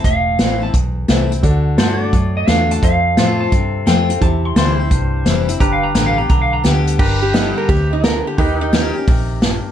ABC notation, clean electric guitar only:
X:1
M:4/4
L:1/8
Q:"Swing" 1/4=173
K:Gmix
V:1 name="Clean electric guitar"
f3 a z4 | z4 z _e f a | f3 a z2 g2 | a c' c'4 z2 |
(3_b f b (3b f b (3b f b g2 | z8 | z8 |]